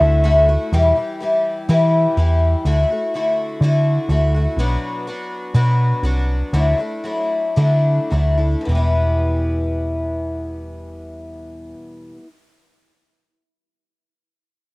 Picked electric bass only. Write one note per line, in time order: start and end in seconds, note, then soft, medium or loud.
0.01 0.55 D2 loud
0.72 0.91 E2 medium
1.69 2.05 E3 medium
2.17 2.53 E2 loud
2.65 2.83 D2 medium
3.61 3.97 D3 medium
4.09 4.45 D2 medium
4.57 4.75 B1 medium
5.54 5.92 B2 medium
6.03 6.41 C2 medium
6.53 6.72 D2 medium
7.57 7.98 D3 medium
8.12 8.54 D2 medium
8.67 11.73 E1 medium